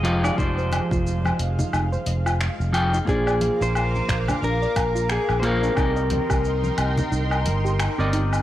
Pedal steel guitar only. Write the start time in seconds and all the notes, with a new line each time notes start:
Already playing: D#5
0.25 D5
0.39 C5
3.09 G#4
3.63 C5
3.77 C5
4.44 A#4
5.12 G#4
5.40 C5
5.46 A#4